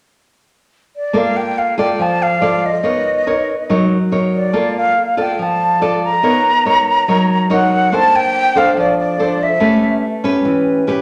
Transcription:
0.96 1.19 D5 medium
1.13 1.97 A#3 medium
1.13 1.74 F4 soft
1.13 1.74 A4 soft
1.13 1.74 D5 medium
1.18 1.38 F5 medium
1.37 1.60 G5 medium
1.58 1.79 F5 medium
1.78 2.38 F4 medium
1.78 2.38 A4 medium
1.78 2.39 D5 medium
1.78 2.03 G5 medium
1.99 2.82 F3 medium
1.99 2.24 A5 medium
2.23 2.68 F5 medium
2.41 2.70 F4 medium
2.41 2.70 A4 medium
2.41 2.70 D5 medium
2.66 3.91 D#5 medium
2.83 3.66 B3 medium
2.83 3.22 D#4 medium
2.83 3.23 A#4 soft
2.83 3.23 C#5 medium
3.27 3.54 D#4 medium
3.27 3.54 A#4 medium
3.27 3.54 C#5 medium
3.69 4.52 F#3 medium
3.69 3.96 D#4 medium
3.69 3.96 A#4 medium
3.69 3.97 C#5 soft
4.12 4.50 D#4 medium
4.12 4.50 A#4 soft
4.12 4.50 C#5 medium
4.35 4.73 D5 medium
4.53 5.36 A#3 medium
4.53 4.95 F4 medium
4.53 4.95 A4 medium
4.53 4.95 D5 medium
4.78 5.15 F5 medium
5.17 5.77 F4 medium
5.17 5.77 A4 medium
5.17 5.77 D5 medium
5.17 5.44 G5 medium
5.39 6.21 F3 medium
5.39 6.07 A5 medium
5.81 6.09 F4 medium
5.81 6.09 A4 medium
5.81 6.09 D5 medium
6.05 7.51 A#5 loud
6.23 7.05 B3 medium
6.23 6.50 D#4 soft
6.23 6.50 A#4 medium
6.23 6.50 C#5 medium
6.65 7.04 D#4 medium
6.65 7.04 A#4 soft
6.65 7.04 C#5 medium
7.08 7.90 F#3 medium
7.08 7.46 D#4 medium
7.08 7.47 A#4 medium
7.08 7.47 C#5 medium
7.50 7.88 D#4 medium
7.50 7.89 A#4 medium
7.50 7.89 C#5 medium
7.50 7.96 F#5 loud
7.92 8.74 A#3 medium
7.92 8.52 D4 soft
7.92 8.52 A4 soft
7.92 8.52 C5 soft
7.92 8.17 A5 loud
8.16 8.59 G5 loud
8.55 9.15 D4 medium
8.55 9.15 A4 medium
8.55 9.16 C5 medium
8.55 8.77 F5 loud
8.77 9.59 F3 medium
8.77 8.97 D5 medium
8.99 9.45 D5 medium
9.19 9.46 D4 medium
9.19 9.46 A4 medium
9.19 9.46 C5 medium
9.43 10.05 E5 medium
9.60 10.43 A3 medium
9.60 10.03 C#4 medium
9.60 10.02 G4 medium
9.60 10.03 B4 medium
10.24 10.84 C#4 medium
10.24 10.84 G4 medium
10.24 10.85 B4 medium
10.45 11.02 E3 medium
10.87 11.02 C#4 medium
10.87 11.02 G4 medium
10.87 11.02 B4 medium

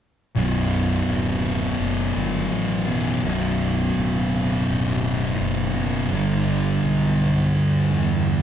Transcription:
0.35 1.01 B0 medium
0.35 2.85 B1 medium
0.35 2.86 F#2 medium
0.35 2.86 B2 medium
1.08 1.73 D1 medium
1.80 2.12 F#1 medium
2.16 2.48 G1 medium
2.52 3.17 A1 medium
2.87 3.22 B1 medium
2.87 3.22 F#2 medium
2.87 3.21 B2 medium
3.23 3.89 B0 medium
3.23 5.74 B1 medium
3.23 5.74 F#2 medium
3.23 5.73 B2 medium
3.97 4.61 D1 medium
4.70 5.34 D1 medium
5.40 6.05 F#1 medium
5.74 6.11 B1 medium
5.74 6.10 F#2 medium
5.74 6.09 B2 medium
6.11 6.77 G1 medium
6.11 8.42 G2 medium
6.11 8.42 D3 medium
6.11 8.42 G3 medium
6.84 7.49 B1 medium
7.56 7.89 D2 medium
7.92 8.25 E2 medium
8.29 8.42 E2 medium

